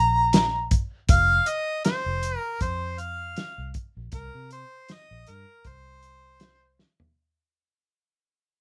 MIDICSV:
0, 0, Header, 1, 4, 480
1, 0, Start_track
1, 0, Tempo, 759301
1, 694, Time_signature, 4, 2, 24, 8
1, 5441, End_track
2, 0, Start_track
2, 0, Title_t, "Harmonica"
2, 0, Program_c, 0, 22
2, 0, Note_on_c, 0, 82, 92
2, 441, Note_off_c, 0, 82, 0
2, 702, Note_on_c, 0, 77, 114
2, 939, Note_on_c, 0, 75, 98
2, 948, Note_off_c, 0, 77, 0
2, 1165, Note_off_c, 0, 75, 0
2, 1169, Note_on_c, 0, 72, 86
2, 1504, Note_off_c, 0, 72, 0
2, 1504, Note_on_c, 0, 70, 86
2, 1626, Note_off_c, 0, 70, 0
2, 1655, Note_on_c, 0, 72, 84
2, 1890, Note_on_c, 0, 77, 97
2, 1900, Note_off_c, 0, 72, 0
2, 2372, Note_off_c, 0, 77, 0
2, 2621, Note_on_c, 0, 70, 94
2, 2841, Note_off_c, 0, 70, 0
2, 2859, Note_on_c, 0, 72, 91
2, 3114, Note_on_c, 0, 75, 91
2, 3123, Note_off_c, 0, 72, 0
2, 3347, Note_on_c, 0, 70, 84
2, 3357, Note_off_c, 0, 75, 0
2, 3591, Note_on_c, 0, 72, 94
2, 3601, Note_off_c, 0, 70, 0
2, 4303, Note_off_c, 0, 72, 0
2, 5441, End_track
3, 0, Start_track
3, 0, Title_t, "Fingered electric bass"
3, 0, Program_c, 1, 33
3, 0, Note_on_c, 1, 34, 88
3, 469, Note_off_c, 1, 34, 0
3, 690, Note_on_c, 1, 29, 104
3, 876, Note_off_c, 1, 29, 0
3, 1303, Note_on_c, 1, 29, 78
3, 1487, Note_off_c, 1, 29, 0
3, 1649, Note_on_c, 1, 41, 88
3, 2118, Note_off_c, 1, 41, 0
3, 2264, Note_on_c, 1, 36, 77
3, 2349, Note_off_c, 1, 36, 0
3, 2508, Note_on_c, 1, 34, 88
3, 2591, Note_off_c, 1, 34, 0
3, 2607, Note_on_c, 1, 36, 101
3, 2709, Note_off_c, 1, 36, 0
3, 2747, Note_on_c, 1, 48, 76
3, 2930, Note_off_c, 1, 48, 0
3, 3230, Note_on_c, 1, 34, 75
3, 3313, Note_off_c, 1, 34, 0
3, 3344, Note_on_c, 1, 43, 82
3, 3439, Note_off_c, 1, 43, 0
3, 3571, Note_on_c, 1, 36, 80
3, 4310, Note_off_c, 1, 36, 0
3, 5441, End_track
4, 0, Start_track
4, 0, Title_t, "Drums"
4, 209, Note_on_c, 9, 42, 89
4, 216, Note_on_c, 9, 38, 106
4, 272, Note_off_c, 9, 42, 0
4, 279, Note_off_c, 9, 38, 0
4, 449, Note_on_c, 9, 42, 62
4, 451, Note_on_c, 9, 36, 77
4, 513, Note_off_c, 9, 42, 0
4, 515, Note_off_c, 9, 36, 0
4, 687, Note_on_c, 9, 42, 88
4, 690, Note_on_c, 9, 36, 110
4, 750, Note_off_c, 9, 42, 0
4, 753, Note_off_c, 9, 36, 0
4, 925, Note_on_c, 9, 42, 64
4, 988, Note_off_c, 9, 42, 0
4, 1167, Note_on_c, 9, 42, 83
4, 1174, Note_on_c, 9, 38, 111
4, 1230, Note_off_c, 9, 42, 0
4, 1237, Note_off_c, 9, 38, 0
4, 1408, Note_on_c, 9, 42, 66
4, 1472, Note_off_c, 9, 42, 0
4, 1648, Note_on_c, 9, 42, 81
4, 1650, Note_on_c, 9, 36, 82
4, 1711, Note_off_c, 9, 42, 0
4, 1713, Note_off_c, 9, 36, 0
4, 1886, Note_on_c, 9, 42, 51
4, 1950, Note_off_c, 9, 42, 0
4, 2127, Note_on_c, 9, 42, 77
4, 2134, Note_on_c, 9, 38, 99
4, 2191, Note_off_c, 9, 42, 0
4, 2198, Note_off_c, 9, 38, 0
4, 2365, Note_on_c, 9, 42, 60
4, 2369, Note_on_c, 9, 36, 78
4, 2429, Note_off_c, 9, 42, 0
4, 2433, Note_off_c, 9, 36, 0
4, 2603, Note_on_c, 9, 42, 78
4, 2609, Note_on_c, 9, 36, 105
4, 2666, Note_off_c, 9, 42, 0
4, 2672, Note_off_c, 9, 36, 0
4, 2849, Note_on_c, 9, 42, 57
4, 2912, Note_off_c, 9, 42, 0
4, 3088, Note_on_c, 9, 42, 74
4, 3095, Note_on_c, 9, 38, 93
4, 3152, Note_off_c, 9, 42, 0
4, 3159, Note_off_c, 9, 38, 0
4, 3329, Note_on_c, 9, 42, 62
4, 3392, Note_off_c, 9, 42, 0
4, 3569, Note_on_c, 9, 42, 75
4, 3571, Note_on_c, 9, 36, 84
4, 3632, Note_off_c, 9, 42, 0
4, 3634, Note_off_c, 9, 36, 0
4, 3810, Note_on_c, 9, 42, 55
4, 3873, Note_off_c, 9, 42, 0
4, 4045, Note_on_c, 9, 42, 83
4, 4052, Note_on_c, 9, 38, 107
4, 4108, Note_off_c, 9, 42, 0
4, 4115, Note_off_c, 9, 38, 0
4, 4294, Note_on_c, 9, 38, 58
4, 4358, Note_off_c, 9, 38, 0
4, 4424, Note_on_c, 9, 43, 68
4, 4487, Note_off_c, 9, 43, 0
4, 5441, End_track
0, 0, End_of_file